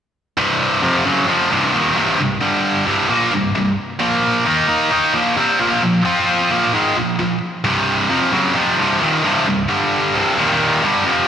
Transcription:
0.38 0.82 C2 medium
0.38 0.82 G2 loud
0.38 0.82 C3 loud
0.82 1.04 F2 medium
0.82 1.05 C3 medium
0.82 1.05 F3 loud
1.05 1.27 F#2 medium
1.05 1.27 C#3 medium
1.05 1.28 F#3 loud
1.27 1.50 F2 loud
1.27 1.50 C3 medium
1.27 1.50 F3 medium
1.51 1.73 C2 medium
1.51 1.73 G2 loud
1.51 1.73 C3 loud
1.73 1.95 D#2 loud
1.73 1.96 A#2 loud
1.73 1.96 D#3 loud
1.95 2.17 C2 medium
1.95 2.17 G2 loud
1.95 2.19 C3 medium
2.18 2.37 C2 medium
2.18 2.37 G2 medium
2.41 2.85 G2 medium
2.41 2.86 D3 medium
2.41 2.86 G3 loud
2.86 3.08 C2 medium
2.86 3.09 G2 loud
2.86 3.09 C3 loud
3.08 3.31 A#2 medium
3.08 3.32 F3 medium
3.08 3.32 A#3 loud
3.32 3.50 C2 medium
3.32 3.50 G2 medium
3.55 3.73 C2 medium
3.55 3.73 G2 medium
4.00 4.45 A#2 loud
4.00 4.45 F3 loud
4.00 4.45 A#3 loud
4.45 4.66 D#3 medium
4.45 4.67 A#3 loud
4.45 4.67 D#4 loud
4.67 4.90 D#3 medium
4.67 4.90 A#3 loud
4.67 4.91 D#4 medium
4.91 5.13 D#3 loud
4.91 5.14 A#3 medium
4.91 5.14 D#4 loud
5.14 5.36 A#2 loud
5.14 5.36 F3 loud
5.14 5.37 A#3 loud
5.37 5.59 C3 loud
5.37 5.59 G3 loud
5.37 5.60 C4 loud
5.59 5.81 A#2 medium
5.59 5.82 F3 loud
5.59 5.82 A#3 loud
5.83 6.01 A#2 medium
5.83 6.01 F3 medium
6.05 6.50 F3 loud
6.05 6.50 C4 loud
6.05 6.50 F4 loud
6.50 6.73 A#2 medium
6.50 6.73 F3 medium
6.50 6.73 A#3 loud
6.73 6.95 G#2 medium
6.73 6.96 D#3 medium
6.73 6.96 G#3 loud
6.96 7.14 A#2 medium
6.96 7.15 F3 medium
7.19 7.37 A#2 medium
7.19 7.37 F3 medium
7.64 8.09 C2 medium
7.64 8.10 G2 loud
7.64 8.09 C3 loud
8.09 8.32 F2 medium
8.09 8.32 C3 medium
8.09 8.32 F3 loud
8.32 8.54 F#2 medium
8.32 8.55 C#3 medium
8.32 8.55 F#3 loud
8.55 8.77 F2 medium
8.55 8.78 C3 medium
8.55 8.78 F3 medium
8.78 9.00 C2 medium
8.78 9.01 G2 loud
8.78 9.01 C3 medium
9.00 9.23 D#2 loud
9.00 9.23 A#2 loud
9.00 9.23 D#3 loud
9.24 9.46 C2 medium
9.24 9.46 G2 medium
9.24 9.46 C3 loud
9.47 9.65 C2 medium
9.47 9.65 G2 medium
9.69 10.14 G2 medium
9.69 10.14 D3 medium
9.69 10.14 G3 loud
10.15 10.37 C2 loud
10.15 10.38 G2 medium
10.15 10.38 C3 loud
10.37 10.82 D#2 medium
10.37 10.82 A#2 loud
10.37 10.83 D#3 loud
10.83 11.05 G2 loud
10.83 11.05 D3 medium
10.83 11.06 G3 loud
11.05 11.27 F2 medium
11.05 11.28 C3 loud
11.05 11.27 F3 loud

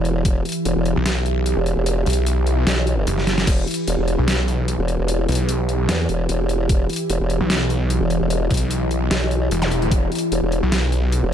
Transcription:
0.00 0.24 E1 loud
0.00 11.34 E3 medium
0.00 11.34 E4 medium
0.00 11.34 G4 medium
0.00 0.24 B4 medium
0.05 closed hi-hat medium
0.25 0.44 E1 loud
0.25 3.46 E5 medium
0.25 kick loud
0.25 closed hi-hat medium
0.45 closed hi-hat soft
0.49 closed hi-hat medium
0.52 closed hi-hat medium
0.65 0.74 E1 loud
0.65 closed hi-hat medium
0.76 0.94 E1 loud
0.85 closed hi-hat medium
0.96 1.55 B1 loud
1.06 snare loud
1.06 closed hi-hat medium
1.26 closed hi-hat medium
1.46 closed hi-hat medium
1.57 1.75 E1 loud
1.66 closed hi-hat medium
1.77 2.05 E1 loud
1.86 closed hi-hat medium
2.06 2.65 B1 loud
2.06 closed hi-hat medium
2.10 closed hi-hat medium
2.13 closed hi-hat medium
2.27 closed hi-hat medium
2.47 closed hi-hat medium
2.67 3.05 B1 loud
2.67 snare loud
2.67 closed hi-hat medium
2.87 closed hi-hat medium
3.07 3.46 F#1 loud
3.07 closed hi-hat medium
3.18 snare soft
3.27 snare medium
3.27 closed hi-hat medium
3.38 snare medium
3.38 closed hi-hat soft
3.47 3.66 E1 loud
3.47 6.68 B4 medium
3.47 kick loud
3.47 closed hi-hat medium
3.47 crash medium
3.67 closed hi-hat medium
3.71 closed hi-hat medium
3.74 closed hi-hat medium
3.87 3.97 E1 loud
3.87 closed hi-hat medium
3.98 4.17 E1 loud
4.08 closed hi-hat medium
4.18 4.77 B1 loud
4.28 snare loud
4.28 closed hi-hat medium
4.48 closed hi-hat medium
4.68 closed hi-hat medium
4.79 4.97 E1 loud
4.88 closed hi-hat medium
4.99 5.27 E1 loud
5.08 closed hi-hat medium
5.28 5.87 B1 loud
5.28 closed hi-hat medium
5.32 closed hi-hat medium
5.35 closed hi-hat medium
5.49 closed hi-hat medium
5.69 closed hi-hat medium
5.89 6.07 E2 loud
5.89 snare loud
5.89 closed hi-hat medium
6.09 6.28 E1 loud
6.09 closed hi-hat medium
6.29 6.68 E1 loud
6.29 closed hi-hat medium
6.49 closed hi-hat medium
6.69 6.88 E1 loud
6.69 9.90 D#5 medium
6.69 kick loud
6.69 closed hi-hat medium
6.89 closed hi-hat medium
6.93 closed hi-hat medium
6.96 closed hi-hat medium
7.10 7.19 E1 loud
7.10 closed hi-hat medium
7.20 7.39 E1 loud
7.30 closed hi-hat medium
7.40 7.99 B1 loud
7.50 snare loud
7.50 closed hi-hat medium
7.70 closed hi-hat medium
7.90 closed hi-hat medium
8.01 8.19 E1 loud
8.10 closed hi-hat medium
8.21 8.49 E1 loud
8.30 closed hi-hat medium
8.51 9.10 B1 loud
8.51 kick medium
8.51 closed hi-hat soft
8.54 closed hi-hat medium
8.57 closed hi-hat medium
8.71 closed hi-hat medium
8.91 closed hi-hat medium
9.11 9.50 B1 loud
9.11 snare loud
9.11 closed hi-hat medium
9.31 closed hi-hat medium
9.51 9.90 E1 loud
9.51 closed hi-hat medium
9.62 snare soft
9.62 zap medium
9.71 closed hi-hat medium
9.82 closed hi-hat soft
9.92 10.10 E1 loud
9.92 11.34 B4 medium
9.92 kick loud
9.92 closed hi-hat medium
10.12 closed hi-hat soft
10.15 closed hi-hat medium
10.18 closed hi-hat medium
10.32 10.41 E1 loud
10.32 closed hi-hat medium
10.42 10.61 E1 loud
10.52 closed hi-hat medium
10.63 11.21 B1 loud
10.72 snare loud
10.72 closed hi-hat medium
10.92 closed hi-hat medium
11.12 closed hi-hat medium
11.23 11.34 E1 loud

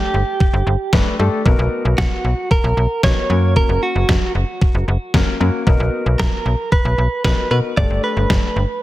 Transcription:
0.00 0.16 A3 medium
0.00 0.16 D4 medium
0.00 0.16 G4 medium
0.00 1.15 G4 medium
0.00 0.16 A4 medium
0.14 0.24 G1 loud
0.40 kick loud
0.53 0.63 G1 loud
0.67 0.76 G1 loud
0.93 1.03 G1 loud
0.93 1.13 A3 medium
0.93 1.13 D4 medium
0.93 1.13 G4 medium
0.93 1.13 B4 medium
0.93 kick loud
0.93 snare loud
1.19 1.29 G2 loud
1.19 1.39 A3 medium
1.19 1.39 D4 medium
1.19 1.39 G4 medium
1.19 1.39 A4 loud
1.46 1.55 B1 loud
1.46 2.26 B3 medium
1.46 2.26 D#4 medium
1.46 2.26 F#4 medium
1.46 2.26 A#4 loud
1.46 kick loud
1.59 1.68 B1 loud
1.85 1.95 B1 loud
1.98 2.08 B1 loud
1.98 2.51 F#4 medium
1.98 kick loud
1.98 snare loud
2.24 2.34 B1 medium
2.51 3.04 A#4 medium
2.51 kick loud
2.64 2.74 B1 loud
2.77 2.87 B1 loud
3.03 3.13 B1 loud
3.03 3.24 B3 medium
3.03 3.24 D#4 medium
3.03 3.24 F#4 medium
3.03 3.24 A#4 medium
3.03 3.56 C#5 loud
3.03 kick loud
3.03 snare loud
3.30 3.59 F#2 loud
3.30 4.14 A#3 medium
3.30 4.14 C#4 medium
3.30 4.14 F#4 medium
3.30 4.14 A#4 medium
3.56 3.81 A#4 loud
3.56 kick loud
3.69 3.79 F#1 loud
3.83 4.32 F#4 medium
3.95 4.05 F#1 medium
4.09 4.19 F#1 medium
4.09 kick loud
4.09 snare loud
4.35 4.45 F#1 medium
4.62 kick loud
4.75 4.84 F#1 medium
4.88 4.97 F#1 loud
5.14 5.24 F#1 loud
5.14 5.34 A#3 medium
5.14 5.34 C#4 medium
5.14 5.34 F#4 medium
5.14 5.34 A#4 medium
5.14 kick loud
5.14 snare loud
5.40 5.50 F#2 loud
5.40 5.60 A#3 medium
5.40 5.60 C#4 medium
5.40 5.60 F#4 medium
5.40 5.60 A#4 medium
5.67 5.76 B1 loud
5.67 6.47 B3 medium
5.67 6.47 D#4 medium
5.67 6.47 F#4 medium
5.67 6.47 A#4 medium
5.67 kick loud
5.80 5.90 B1 loud
6.06 6.16 B1 loud
6.20 6.29 B1 loud
6.20 6.72 A#4 medium
6.20 kick loud
6.20 snare loud
6.46 6.55 B1 loud
6.72 7.24 B4 medium
6.72 kick loud
6.85 6.95 B1 loud
6.98 7.08 B1 loud
7.25 7.34 B1 loud
7.25 7.45 B3 medium
7.25 7.45 D#4 medium
7.25 7.45 F#4 medium
7.25 7.45 A#4 medium
7.25 7.50 B4 medium
7.25 kick loud
7.25 snare loud
7.51 7.60 B2 medium
7.51 7.71 B3 medium
7.51 7.71 D#4 medium
7.51 7.71 F#4 medium
7.51 7.71 A#4 medium
7.51 7.58 B4 medium
7.77 7.87 G1 loud
7.77 8.57 A3 medium
7.77 8.58 D4 medium
7.77 8.58 G4 medium
7.77 8.57 A4 medium
7.77 8.03 D5 loud
7.77 kick loud
7.90 8.00 G1 medium
8.04 8.82 B4 loud
8.17 8.26 G1 loud
8.30 8.40 G1 loud
8.30 kick loud
8.30 snare loud
8.56 8.66 G1 loud

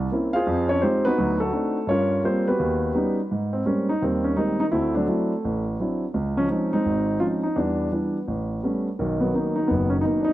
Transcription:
0.11 0.35 A#3 soft
0.11 0.35 C4 soft
0.11 0.36 C#4 soft
0.11 0.36 E4 medium
0.33 0.67 F4 medium
0.33 0.67 G#4 medium
0.33 0.68 C5 medium
0.33 0.66 F5 medium
0.47 0.77 F2 medium
0.47 0.77 F3 medium
0.69 0.82 C#4 medium
0.69 0.81 C#5 medium
0.82 1.06 G#3 medium
0.82 1.04 C4 medium
0.82 1.05 D#4 medium
0.82 1.06 F4 soft
0.82 1.06 G4 medium
0.82 1.05 C5 medium
1.05 1.39 B3 medium
1.05 1.39 D#4 medium
1.05 1.39 F#4 medium
1.05 1.38 B4 loud
1.18 1.48 D2 medium
1.18 1.48 F#3 medium
1.40 1.86 A3 medium
1.40 1.52 F#4 medium
1.40 1.90 A4 medium
1.53 1.77 C4 medium
1.53 1.77 D4 soft
1.53 1.77 D#4 soft
1.53 1.77 F#4 medium
1.87 2.18 G2 medium
1.87 2.22 C#4 medium
1.87 2.22 F4 medium
1.87 2.23 A#4 medium
1.87 2.22 C#5 medium
2.24 2.48 G3 medium
2.24 2.48 A#3 soft
2.24 2.46 C4 medium
2.24 2.48 F4 medium
2.24 2.46 C5 medium
2.48 2.93 B3 medium
2.48 3.14 F#4 medium
2.48 3.14 G4 medium
2.48 3.14 B4 medium
2.59 2.90 D#2 medium
2.95 3.19 G3 medium
2.95 3.19 B3 soft
2.95 3.19 C#4 soft
2.95 3.19 D#4 medium
3.31 3.61 G#2 medium
3.53 3.65 C4 medium
3.66 3.90 G3 soft
3.66 3.90 G#3 soft
3.66 3.90 A#3 soft
3.66 3.90 C4 medium
3.66 3.89 C#4 medium
3.89 4.02 D#4 medium
4.02 4.32 D#2 medium
4.02 4.69 D#3 medium
4.02 4.35 G3 soft
4.02 4.25 C4 medium
4.24 4.36 C#4 medium
4.37 4.61 G3 soft
4.37 4.61 G#3 soft
4.37 4.61 A#3 soft
4.37 4.61 C4 medium
4.37 4.59 D#4 medium
4.60 4.65 D#4 medium
4.72 5.03 D2 medium
4.72 4.95 A3 medium
4.72 5.07 C4 medium
4.72 4.93 E4 medium
4.95 5.06 F#3 medium
4.95 5.63 A3 medium
4.95 5.07 D4 medium
5.07 5.32 F#3 medium
5.07 5.32 C4 soft
5.07 5.32 D4 soft
5.07 5.32 E4 medium
5.45 5.75 A1 medium
5.80 6.03 F#3 soft
5.80 6.04 C4 soft
5.80 6.04 D4 soft
5.80 6.04 E4 medium
6.14 6.45 C#2 medium
6.37 6.48 F3 medium
6.37 6.72 G#3 medium
6.37 6.48 C#4 medium
6.49 6.73 F3 medium
6.49 6.73 C4 soft
6.49 6.74 C#4 soft
6.49 6.71 D#4 medium
6.73 7.40 G#3 medium
6.73 7.19 C4 medium
6.73 7.18 D#4 medium
6.85 7.16 G#1 medium
7.20 7.45 F3 soft
7.20 7.45 C4 soft
7.20 7.45 C#4 soft
7.20 7.42 D#4 soft
7.20 7.25 F4 medium
7.43 7.57 D#4 medium
7.56 7.87 E2 medium
7.56 7.91 G3 medium
7.56 8.24 B3 soft
7.56 7.91 D4 medium
7.92 8.16 E3 soft
7.92 8.16 G3 soft
7.92 8.16 D4 medium
8.28 8.58 A1 medium
8.63 8.87 G3 soft
8.63 8.87 A3 soft
8.63 8.87 B3 soft
8.63 8.87 C#4 medium
8.99 9.30 B1 medium
8.99 9.21 D#3 medium
9.20 9.69 D#3 medium
9.20 9.69 F#3 medium
9.20 9.34 B3 medium
9.34 9.58 A#3 medium
9.34 9.58 B3 soft
9.34 9.54 D#4 medium
9.56 9.69 D#4 medium
9.68 10.01 F#1 medium
9.68 10.33 D#3 medium
9.68 10.33 F#3 medium
9.68 9.90 B3 medium
9.90 9.95 C#4 medium
10.01 10.04 D#4 medium
10.05 10.29 A#3 soft
10.05 10.29 B3 soft
10.05 10.23 D#4 soft
10.20 10.27 D4 medium
10.25 10.30 D#4 medium

